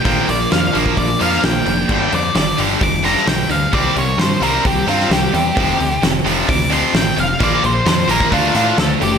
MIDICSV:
0, 0, Header, 1, 6, 480
1, 0, Start_track
1, 0, Tempo, 459067
1, 54, Time_signature, 4, 2, 24, 8
1, 9600, End_track
2, 0, Start_track
2, 0, Title_t, "Lead electric guitar"
2, 0, Program_c, 0, 29
2, 61, Note_on_c, 0, 79, 98
2, 291, Note_off_c, 0, 79, 0
2, 312, Note_on_c, 0, 74, 83
2, 537, Note_off_c, 0, 74, 0
2, 547, Note_on_c, 0, 77, 93
2, 775, Note_off_c, 0, 77, 0
2, 1022, Note_on_c, 0, 74, 91
2, 1253, Note_off_c, 0, 74, 0
2, 1279, Note_on_c, 0, 77, 90
2, 1502, Note_off_c, 0, 77, 0
2, 1512, Note_on_c, 0, 79, 97
2, 1972, Note_off_c, 0, 79, 0
2, 2008, Note_on_c, 0, 79, 82
2, 2227, Note_off_c, 0, 79, 0
2, 2245, Note_on_c, 0, 74, 93
2, 2466, Note_off_c, 0, 74, 0
2, 2483, Note_on_c, 0, 74, 101
2, 2705, Note_off_c, 0, 74, 0
2, 2963, Note_on_c, 0, 86, 97
2, 3186, Note_off_c, 0, 86, 0
2, 3193, Note_on_c, 0, 82, 93
2, 3421, Note_off_c, 0, 82, 0
2, 3429, Note_on_c, 0, 79, 91
2, 3659, Note_off_c, 0, 79, 0
2, 3674, Note_on_c, 0, 77, 99
2, 3901, Note_off_c, 0, 77, 0
2, 3905, Note_on_c, 0, 74, 88
2, 4137, Note_off_c, 0, 74, 0
2, 4168, Note_on_c, 0, 73, 94
2, 4385, Note_on_c, 0, 72, 88
2, 4389, Note_off_c, 0, 73, 0
2, 4617, Note_off_c, 0, 72, 0
2, 4634, Note_on_c, 0, 70, 90
2, 4862, Note_off_c, 0, 70, 0
2, 4875, Note_on_c, 0, 67, 84
2, 5103, Note_off_c, 0, 67, 0
2, 5118, Note_on_c, 0, 65, 98
2, 5344, Note_off_c, 0, 65, 0
2, 5361, Note_on_c, 0, 67, 97
2, 6285, Note_off_c, 0, 67, 0
2, 6791, Note_on_c, 0, 86, 99
2, 7021, Note_off_c, 0, 86, 0
2, 7041, Note_on_c, 0, 84, 92
2, 7266, Note_off_c, 0, 84, 0
2, 7282, Note_on_c, 0, 79, 101
2, 7506, Note_off_c, 0, 79, 0
2, 7526, Note_on_c, 0, 77, 98
2, 7748, Note_off_c, 0, 77, 0
2, 7775, Note_on_c, 0, 74, 96
2, 7992, Note_off_c, 0, 74, 0
2, 8005, Note_on_c, 0, 72, 90
2, 8227, Note_off_c, 0, 72, 0
2, 8238, Note_on_c, 0, 72, 108
2, 8463, Note_off_c, 0, 72, 0
2, 8479, Note_on_c, 0, 70, 81
2, 8703, Note_off_c, 0, 70, 0
2, 8718, Note_on_c, 0, 65, 91
2, 8939, Note_off_c, 0, 65, 0
2, 8951, Note_on_c, 0, 65, 101
2, 9178, Note_off_c, 0, 65, 0
2, 9186, Note_on_c, 0, 69, 101
2, 9191, Note_off_c, 0, 69, 0
2, 9191, Note_on_c, 0, 69, 78
2, 9205, Note_on_c, 0, 81, 107
2, 9251, Note_off_c, 0, 69, 0
2, 9266, Note_off_c, 0, 81, 0
2, 9434, Note_on_c, 0, 67, 75
2, 9446, Note_on_c, 0, 79, 107
2, 9600, Note_off_c, 0, 67, 0
2, 9600, Note_off_c, 0, 79, 0
2, 9600, End_track
3, 0, Start_track
3, 0, Title_t, "Clean electric guitar"
3, 0, Program_c, 1, 27
3, 75, Note_on_c, 1, 62, 97
3, 272, Note_off_c, 1, 62, 0
3, 285, Note_on_c, 1, 62, 74
3, 304, Note_on_c, 1, 58, 65
3, 533, Note_off_c, 1, 58, 0
3, 545, Note_off_c, 1, 62, 0
3, 545, Note_on_c, 1, 58, 82
3, 557, Note_on_c, 1, 62, 77
3, 750, Note_off_c, 1, 62, 0
3, 762, Note_on_c, 1, 62, 75
3, 767, Note_off_c, 1, 58, 0
3, 1505, Note_off_c, 1, 62, 0
3, 1510, Note_on_c, 1, 58, 94
3, 1518, Note_on_c, 1, 62, 100
3, 1717, Note_off_c, 1, 62, 0
3, 1730, Note_on_c, 1, 62, 67
3, 1735, Note_off_c, 1, 58, 0
3, 1748, Note_on_c, 1, 58, 69
3, 1960, Note_off_c, 1, 62, 0
3, 1969, Note_off_c, 1, 58, 0
3, 9600, End_track
4, 0, Start_track
4, 0, Title_t, "Distorted electric guitar"
4, 0, Program_c, 2, 30
4, 45, Note_on_c, 2, 46, 85
4, 51, Note_on_c, 2, 53, 87
4, 58, Note_on_c, 2, 58, 105
4, 276, Note_off_c, 2, 46, 0
4, 279, Note_off_c, 2, 53, 0
4, 282, Note_off_c, 2, 58, 0
4, 292, Note_on_c, 2, 46, 71
4, 299, Note_on_c, 2, 53, 79
4, 510, Note_off_c, 2, 46, 0
4, 513, Note_off_c, 2, 53, 0
4, 532, Note_on_c, 2, 46, 66
4, 535, Note_on_c, 2, 53, 79
4, 747, Note_off_c, 2, 46, 0
4, 752, Note_off_c, 2, 53, 0
4, 760, Note_on_c, 2, 46, 89
4, 766, Note_on_c, 2, 53, 105
4, 775, Note_on_c, 2, 58, 101
4, 994, Note_off_c, 2, 46, 0
4, 997, Note_off_c, 2, 53, 0
4, 1001, Note_off_c, 2, 58, 0
4, 1010, Note_on_c, 2, 46, 75
4, 1013, Note_on_c, 2, 53, 83
4, 1230, Note_off_c, 2, 46, 0
4, 1231, Note_off_c, 2, 53, 0
4, 1246, Note_on_c, 2, 46, 89
4, 1253, Note_on_c, 2, 53, 89
4, 1260, Note_on_c, 2, 58, 91
4, 1478, Note_off_c, 2, 46, 0
4, 1481, Note_off_c, 2, 53, 0
4, 1485, Note_off_c, 2, 58, 0
4, 1493, Note_on_c, 2, 46, 77
4, 1497, Note_on_c, 2, 53, 87
4, 1712, Note_off_c, 2, 46, 0
4, 1714, Note_off_c, 2, 53, 0
4, 1731, Note_on_c, 2, 46, 57
4, 1738, Note_on_c, 2, 53, 72
4, 1951, Note_off_c, 2, 46, 0
4, 1955, Note_off_c, 2, 53, 0
4, 1974, Note_on_c, 2, 43, 91
4, 1983, Note_on_c, 2, 50, 95
4, 1993, Note_on_c, 2, 55, 97
4, 2203, Note_off_c, 2, 43, 0
4, 2207, Note_off_c, 2, 50, 0
4, 2212, Note_off_c, 2, 55, 0
4, 2219, Note_on_c, 2, 43, 66
4, 2225, Note_on_c, 2, 50, 72
4, 2436, Note_off_c, 2, 43, 0
4, 2439, Note_off_c, 2, 50, 0
4, 2457, Note_on_c, 2, 43, 71
4, 2458, Note_on_c, 2, 50, 74
4, 2675, Note_off_c, 2, 43, 0
4, 2676, Note_off_c, 2, 50, 0
4, 2694, Note_on_c, 2, 43, 81
4, 2698, Note_on_c, 2, 50, 99
4, 2707, Note_on_c, 2, 55, 107
4, 2917, Note_off_c, 2, 43, 0
4, 2920, Note_off_c, 2, 50, 0
4, 2930, Note_off_c, 2, 55, 0
4, 2930, Note_on_c, 2, 43, 73
4, 2932, Note_on_c, 2, 50, 89
4, 3152, Note_off_c, 2, 43, 0
4, 3153, Note_off_c, 2, 50, 0
4, 3168, Note_on_c, 2, 43, 81
4, 3180, Note_on_c, 2, 50, 93
4, 3184, Note_on_c, 2, 55, 92
4, 3401, Note_off_c, 2, 43, 0
4, 3407, Note_off_c, 2, 50, 0
4, 3409, Note_off_c, 2, 55, 0
4, 3418, Note_on_c, 2, 43, 81
4, 3427, Note_on_c, 2, 50, 79
4, 3636, Note_off_c, 2, 43, 0
4, 3641, Note_off_c, 2, 50, 0
4, 3652, Note_on_c, 2, 43, 69
4, 3657, Note_on_c, 2, 50, 66
4, 3873, Note_off_c, 2, 43, 0
4, 3876, Note_off_c, 2, 50, 0
4, 3894, Note_on_c, 2, 48, 85
4, 3902, Note_on_c, 2, 55, 103
4, 3908, Note_on_c, 2, 60, 108
4, 4121, Note_off_c, 2, 48, 0
4, 4121, Note_off_c, 2, 55, 0
4, 4131, Note_off_c, 2, 60, 0
4, 4133, Note_on_c, 2, 48, 76
4, 4133, Note_on_c, 2, 55, 76
4, 4355, Note_off_c, 2, 48, 0
4, 4355, Note_off_c, 2, 55, 0
4, 4370, Note_on_c, 2, 48, 72
4, 4371, Note_on_c, 2, 55, 83
4, 4593, Note_off_c, 2, 48, 0
4, 4594, Note_off_c, 2, 55, 0
4, 4605, Note_on_c, 2, 48, 89
4, 4616, Note_on_c, 2, 55, 99
4, 4625, Note_on_c, 2, 60, 97
4, 4836, Note_off_c, 2, 48, 0
4, 4842, Note_off_c, 2, 55, 0
4, 4848, Note_on_c, 2, 48, 75
4, 4850, Note_off_c, 2, 60, 0
4, 4854, Note_on_c, 2, 55, 96
4, 5073, Note_off_c, 2, 48, 0
4, 5076, Note_off_c, 2, 55, 0
4, 5085, Note_on_c, 2, 48, 91
4, 5089, Note_on_c, 2, 55, 88
4, 5099, Note_on_c, 2, 60, 99
4, 5314, Note_off_c, 2, 48, 0
4, 5320, Note_off_c, 2, 55, 0
4, 5326, Note_on_c, 2, 48, 72
4, 5327, Note_off_c, 2, 60, 0
4, 5333, Note_on_c, 2, 55, 86
4, 5552, Note_off_c, 2, 48, 0
4, 5555, Note_off_c, 2, 55, 0
4, 5576, Note_on_c, 2, 48, 64
4, 5579, Note_on_c, 2, 55, 81
4, 5797, Note_off_c, 2, 48, 0
4, 5798, Note_off_c, 2, 55, 0
4, 5816, Note_on_c, 2, 41, 99
4, 5823, Note_on_c, 2, 48, 102
4, 5828, Note_on_c, 2, 53, 103
4, 6039, Note_off_c, 2, 41, 0
4, 6046, Note_off_c, 2, 48, 0
4, 6051, Note_on_c, 2, 41, 69
4, 6052, Note_off_c, 2, 53, 0
4, 6059, Note_on_c, 2, 48, 84
4, 6274, Note_off_c, 2, 41, 0
4, 6278, Note_off_c, 2, 48, 0
4, 6297, Note_on_c, 2, 41, 83
4, 6303, Note_on_c, 2, 48, 77
4, 6517, Note_off_c, 2, 41, 0
4, 6520, Note_off_c, 2, 48, 0
4, 6531, Note_on_c, 2, 41, 90
4, 6539, Note_on_c, 2, 48, 97
4, 6546, Note_on_c, 2, 53, 106
4, 6763, Note_off_c, 2, 41, 0
4, 6768, Note_off_c, 2, 48, 0
4, 6771, Note_off_c, 2, 53, 0
4, 6775, Note_on_c, 2, 41, 81
4, 6780, Note_on_c, 2, 48, 86
4, 6996, Note_off_c, 2, 41, 0
4, 6999, Note_off_c, 2, 48, 0
4, 7008, Note_on_c, 2, 41, 91
4, 7016, Note_on_c, 2, 48, 90
4, 7024, Note_on_c, 2, 53, 94
4, 7242, Note_off_c, 2, 41, 0
4, 7246, Note_off_c, 2, 48, 0
4, 7250, Note_off_c, 2, 53, 0
4, 7257, Note_on_c, 2, 41, 75
4, 7261, Note_on_c, 2, 48, 98
4, 7476, Note_off_c, 2, 41, 0
4, 7479, Note_off_c, 2, 48, 0
4, 7501, Note_on_c, 2, 41, 64
4, 7504, Note_on_c, 2, 48, 77
4, 7718, Note_off_c, 2, 41, 0
4, 7720, Note_off_c, 2, 48, 0
4, 7734, Note_on_c, 2, 46, 92
4, 7742, Note_on_c, 2, 53, 94
4, 7753, Note_on_c, 2, 58, 110
4, 7964, Note_off_c, 2, 46, 0
4, 7968, Note_off_c, 2, 53, 0
4, 7973, Note_off_c, 2, 58, 0
4, 7978, Note_on_c, 2, 46, 82
4, 7979, Note_on_c, 2, 53, 81
4, 8196, Note_off_c, 2, 46, 0
4, 8197, Note_off_c, 2, 53, 0
4, 8210, Note_on_c, 2, 46, 77
4, 8214, Note_on_c, 2, 53, 81
4, 8432, Note_off_c, 2, 46, 0
4, 8434, Note_off_c, 2, 53, 0
4, 8445, Note_on_c, 2, 46, 96
4, 8454, Note_on_c, 2, 53, 88
4, 8458, Note_on_c, 2, 58, 102
4, 8678, Note_off_c, 2, 46, 0
4, 8683, Note_off_c, 2, 53, 0
4, 8685, Note_off_c, 2, 58, 0
4, 8686, Note_on_c, 2, 50, 94
4, 8694, Note_on_c, 2, 57, 94
4, 8700, Note_on_c, 2, 62, 116
4, 8913, Note_off_c, 2, 50, 0
4, 8920, Note_off_c, 2, 57, 0
4, 8925, Note_off_c, 2, 62, 0
4, 8925, Note_on_c, 2, 50, 88
4, 8932, Note_on_c, 2, 57, 85
4, 8941, Note_on_c, 2, 62, 92
4, 9147, Note_off_c, 2, 50, 0
4, 9156, Note_off_c, 2, 57, 0
4, 9160, Note_on_c, 2, 50, 89
4, 9165, Note_off_c, 2, 62, 0
4, 9168, Note_on_c, 2, 57, 87
4, 9384, Note_off_c, 2, 50, 0
4, 9389, Note_off_c, 2, 57, 0
4, 9410, Note_on_c, 2, 50, 71
4, 9412, Note_on_c, 2, 57, 74
4, 9600, Note_off_c, 2, 50, 0
4, 9600, Note_off_c, 2, 57, 0
4, 9600, End_track
5, 0, Start_track
5, 0, Title_t, "Picked electric bass"
5, 0, Program_c, 3, 34
5, 53, Note_on_c, 3, 34, 90
5, 228, Note_off_c, 3, 34, 0
5, 299, Note_on_c, 3, 34, 94
5, 472, Note_off_c, 3, 34, 0
5, 544, Note_on_c, 3, 41, 87
5, 715, Note_off_c, 3, 41, 0
5, 788, Note_on_c, 3, 34, 88
5, 958, Note_off_c, 3, 34, 0
5, 1016, Note_on_c, 3, 34, 86
5, 1190, Note_off_c, 3, 34, 0
5, 1268, Note_on_c, 3, 41, 82
5, 1438, Note_off_c, 3, 41, 0
5, 1501, Note_on_c, 3, 34, 86
5, 1674, Note_off_c, 3, 34, 0
5, 1738, Note_on_c, 3, 29, 83
5, 1912, Note_off_c, 3, 29, 0
5, 1984, Note_on_c, 3, 31, 93
5, 2156, Note_off_c, 3, 31, 0
5, 2227, Note_on_c, 3, 41, 92
5, 2398, Note_off_c, 3, 41, 0
5, 2456, Note_on_c, 3, 31, 90
5, 2631, Note_off_c, 3, 31, 0
5, 2704, Note_on_c, 3, 31, 85
5, 2876, Note_off_c, 3, 31, 0
5, 2940, Note_on_c, 3, 29, 87
5, 3288, Note_off_c, 3, 29, 0
5, 3422, Note_on_c, 3, 35, 79
5, 3596, Note_off_c, 3, 35, 0
5, 3653, Note_on_c, 3, 38, 85
5, 3830, Note_off_c, 3, 38, 0
5, 3903, Note_on_c, 3, 36, 96
5, 4077, Note_off_c, 3, 36, 0
5, 4139, Note_on_c, 3, 36, 93
5, 4314, Note_off_c, 3, 36, 0
5, 4364, Note_on_c, 3, 43, 92
5, 4545, Note_off_c, 3, 43, 0
5, 4606, Note_on_c, 3, 36, 83
5, 4786, Note_off_c, 3, 36, 0
5, 4862, Note_on_c, 3, 36, 89
5, 5037, Note_off_c, 3, 36, 0
5, 5092, Note_on_c, 3, 43, 77
5, 5271, Note_off_c, 3, 43, 0
5, 5332, Note_on_c, 3, 36, 87
5, 5510, Note_off_c, 3, 36, 0
5, 5579, Note_on_c, 3, 40, 91
5, 5755, Note_off_c, 3, 40, 0
5, 5824, Note_on_c, 3, 29, 90
5, 5998, Note_off_c, 3, 29, 0
5, 6064, Note_on_c, 3, 38, 86
5, 6238, Note_off_c, 3, 38, 0
5, 6298, Note_on_c, 3, 29, 91
5, 6474, Note_off_c, 3, 29, 0
5, 6536, Note_on_c, 3, 29, 89
5, 6713, Note_off_c, 3, 29, 0
5, 6785, Note_on_c, 3, 38, 89
5, 7132, Note_off_c, 3, 38, 0
5, 7255, Note_on_c, 3, 33, 90
5, 7431, Note_off_c, 3, 33, 0
5, 7501, Note_on_c, 3, 29, 87
5, 7676, Note_off_c, 3, 29, 0
5, 7743, Note_on_c, 3, 34, 98
5, 7916, Note_off_c, 3, 34, 0
5, 7982, Note_on_c, 3, 34, 89
5, 8156, Note_off_c, 3, 34, 0
5, 8219, Note_on_c, 3, 41, 97
5, 8393, Note_off_c, 3, 41, 0
5, 8449, Note_on_c, 3, 34, 89
5, 8627, Note_off_c, 3, 34, 0
5, 8703, Note_on_c, 3, 38, 86
5, 8875, Note_off_c, 3, 38, 0
5, 8937, Note_on_c, 3, 45, 81
5, 9111, Note_off_c, 3, 45, 0
5, 9179, Note_on_c, 3, 38, 84
5, 9352, Note_off_c, 3, 38, 0
5, 9422, Note_on_c, 3, 30, 85
5, 9593, Note_off_c, 3, 30, 0
5, 9600, End_track
6, 0, Start_track
6, 0, Title_t, "Drums"
6, 55, Note_on_c, 9, 36, 102
6, 58, Note_on_c, 9, 46, 69
6, 159, Note_off_c, 9, 36, 0
6, 163, Note_off_c, 9, 46, 0
6, 303, Note_on_c, 9, 46, 59
6, 407, Note_off_c, 9, 46, 0
6, 542, Note_on_c, 9, 38, 103
6, 542, Note_on_c, 9, 46, 75
6, 647, Note_off_c, 9, 38, 0
6, 647, Note_off_c, 9, 46, 0
6, 784, Note_on_c, 9, 46, 57
6, 888, Note_off_c, 9, 46, 0
6, 898, Note_on_c, 9, 36, 73
6, 1002, Note_off_c, 9, 36, 0
6, 1018, Note_on_c, 9, 36, 92
6, 1026, Note_on_c, 9, 46, 76
6, 1123, Note_off_c, 9, 36, 0
6, 1130, Note_off_c, 9, 46, 0
6, 1265, Note_on_c, 9, 46, 61
6, 1369, Note_off_c, 9, 46, 0
6, 1393, Note_on_c, 9, 38, 31
6, 1497, Note_off_c, 9, 38, 0
6, 1503, Note_on_c, 9, 38, 116
6, 1503, Note_on_c, 9, 46, 77
6, 1608, Note_off_c, 9, 38, 0
6, 1608, Note_off_c, 9, 46, 0
6, 1740, Note_on_c, 9, 46, 55
6, 1844, Note_off_c, 9, 46, 0
6, 1978, Note_on_c, 9, 49, 86
6, 1979, Note_on_c, 9, 36, 100
6, 2082, Note_off_c, 9, 49, 0
6, 2083, Note_off_c, 9, 36, 0
6, 2221, Note_on_c, 9, 46, 61
6, 2325, Note_off_c, 9, 46, 0
6, 2463, Note_on_c, 9, 38, 109
6, 2463, Note_on_c, 9, 46, 85
6, 2567, Note_off_c, 9, 38, 0
6, 2567, Note_off_c, 9, 46, 0
6, 2701, Note_on_c, 9, 46, 54
6, 2806, Note_off_c, 9, 46, 0
6, 2940, Note_on_c, 9, 46, 78
6, 2941, Note_on_c, 9, 36, 102
6, 3045, Note_off_c, 9, 36, 0
6, 3045, Note_off_c, 9, 46, 0
6, 3185, Note_on_c, 9, 38, 28
6, 3185, Note_on_c, 9, 46, 55
6, 3289, Note_off_c, 9, 38, 0
6, 3289, Note_off_c, 9, 46, 0
6, 3309, Note_on_c, 9, 38, 33
6, 3413, Note_off_c, 9, 38, 0
6, 3425, Note_on_c, 9, 38, 114
6, 3425, Note_on_c, 9, 46, 80
6, 3529, Note_off_c, 9, 38, 0
6, 3529, Note_off_c, 9, 46, 0
6, 3666, Note_on_c, 9, 46, 50
6, 3771, Note_off_c, 9, 46, 0
6, 3902, Note_on_c, 9, 36, 107
6, 3903, Note_on_c, 9, 46, 73
6, 4006, Note_off_c, 9, 36, 0
6, 4008, Note_off_c, 9, 46, 0
6, 4146, Note_on_c, 9, 46, 52
6, 4251, Note_off_c, 9, 46, 0
6, 4386, Note_on_c, 9, 38, 106
6, 4386, Note_on_c, 9, 46, 74
6, 4491, Note_off_c, 9, 38, 0
6, 4491, Note_off_c, 9, 46, 0
6, 4628, Note_on_c, 9, 46, 58
6, 4732, Note_off_c, 9, 46, 0
6, 4863, Note_on_c, 9, 36, 102
6, 4863, Note_on_c, 9, 46, 76
6, 4968, Note_off_c, 9, 36, 0
6, 4968, Note_off_c, 9, 46, 0
6, 5107, Note_on_c, 9, 46, 55
6, 5212, Note_off_c, 9, 46, 0
6, 5230, Note_on_c, 9, 38, 34
6, 5334, Note_off_c, 9, 38, 0
6, 5348, Note_on_c, 9, 38, 108
6, 5348, Note_on_c, 9, 46, 80
6, 5453, Note_off_c, 9, 38, 0
6, 5453, Note_off_c, 9, 46, 0
6, 5588, Note_on_c, 9, 46, 60
6, 5692, Note_off_c, 9, 46, 0
6, 5823, Note_on_c, 9, 36, 109
6, 5826, Note_on_c, 9, 46, 77
6, 5928, Note_off_c, 9, 36, 0
6, 5930, Note_off_c, 9, 46, 0
6, 6069, Note_on_c, 9, 46, 61
6, 6174, Note_off_c, 9, 46, 0
6, 6309, Note_on_c, 9, 38, 111
6, 6309, Note_on_c, 9, 46, 83
6, 6414, Note_off_c, 9, 38, 0
6, 6414, Note_off_c, 9, 46, 0
6, 6550, Note_on_c, 9, 46, 59
6, 6655, Note_off_c, 9, 46, 0
6, 6784, Note_on_c, 9, 36, 112
6, 6790, Note_on_c, 9, 46, 81
6, 6889, Note_off_c, 9, 36, 0
6, 6895, Note_off_c, 9, 46, 0
6, 7029, Note_on_c, 9, 46, 59
6, 7134, Note_off_c, 9, 46, 0
6, 7264, Note_on_c, 9, 38, 113
6, 7264, Note_on_c, 9, 46, 86
6, 7368, Note_off_c, 9, 38, 0
6, 7368, Note_off_c, 9, 46, 0
6, 7509, Note_on_c, 9, 46, 53
6, 7614, Note_off_c, 9, 46, 0
6, 7742, Note_on_c, 9, 36, 109
6, 7746, Note_on_c, 9, 46, 75
6, 7847, Note_off_c, 9, 36, 0
6, 7851, Note_off_c, 9, 46, 0
6, 7988, Note_on_c, 9, 46, 52
6, 8093, Note_off_c, 9, 46, 0
6, 8224, Note_on_c, 9, 38, 102
6, 8224, Note_on_c, 9, 46, 81
6, 8328, Note_off_c, 9, 38, 0
6, 8328, Note_off_c, 9, 46, 0
6, 8463, Note_on_c, 9, 46, 58
6, 8567, Note_off_c, 9, 46, 0
6, 8579, Note_on_c, 9, 36, 78
6, 8683, Note_off_c, 9, 36, 0
6, 8699, Note_on_c, 9, 36, 95
6, 8700, Note_on_c, 9, 46, 77
6, 8804, Note_off_c, 9, 36, 0
6, 8805, Note_off_c, 9, 46, 0
6, 8939, Note_on_c, 9, 38, 31
6, 8939, Note_on_c, 9, 46, 58
6, 9043, Note_off_c, 9, 38, 0
6, 9043, Note_off_c, 9, 46, 0
6, 9182, Note_on_c, 9, 38, 122
6, 9182, Note_on_c, 9, 46, 81
6, 9286, Note_off_c, 9, 38, 0
6, 9286, Note_off_c, 9, 46, 0
6, 9428, Note_on_c, 9, 46, 59
6, 9532, Note_off_c, 9, 46, 0
6, 9600, End_track
0, 0, End_of_file